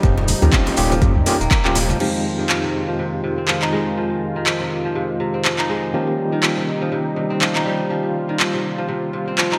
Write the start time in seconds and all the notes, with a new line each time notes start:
Already playing: C3 G3 C4 D#4
0.03 D#1 F3 A#3 C#4 F4 G4, kick, mid tom, maracas
0.18 djembe slap, muted conga
0.28 open hi-hat, high conga, maracas
0.42 D#2 D#3 A#3 C#4 F4 G4, muted conga, djembe tone, low conga, maracas
0.52 F3, kick, clap, high conga, djembe bass, maracas
0.67 C3, open hi-hat, djembe slap, muted conga
0.77 D#1 A#3 C#4 F4 G4, open hi-hat, djembe tone, maracas
0.91 F3, muted conga, djembe tone, high conga, maracas
1.01 C3 A#3 C#4 F4 G4, kick, mid tom, high conga, maracas
1.16 C#2
1.26 D#3 A#3 C#4 F4 G4, open hi-hat, muted conga, djembe slap, maracas
1.41 D#1 A#3, maracas
1.51 A#3, kick, clap, muted conga, maracas
1.65 D#1 F3 A#3 C#4 F4 G4, clap
1.75 C3, open hi-hat, djembe slap, muted conga, high conga, maracas
1.89 F3, high conga, maracas
2.00 F2 D#3 F3 G#3 C4 D#4 F4 G4, crash
2.39 D#3
2.49 F3, clap
2.63 C3
2.88 F3
2.99 C3
3.24 C3
3.38 C4
3.48 F3, clap
3.62 D#4, clap
3.73 G#3
3.97 F3
4.36 D#3
4.46 F3, clap
4.60 C3
4.85 F3
4.95 C3
5.20 C3
5.34 C4
5.44 F3, clap
5.59 D#4, clap
5.69 G#3
5.94 D#3 F3 G3 A#3 C#4 D#4 F4 G4
6.32 D#3
6.43 F3, clap
6.57 C3
6.82 F3
6.92 C3
7.16 C3
7.30 C4
7.41 F3, clap
7.55 D#4, clap
7.66 G3
7.90 F3 F4
8.29 D#3
8.40 F3, clap
8.54 C3
8.78 F3
8.88 C3
9.13 C3
9.28 C4
9.38 F3, clap
9.52 D#4, clap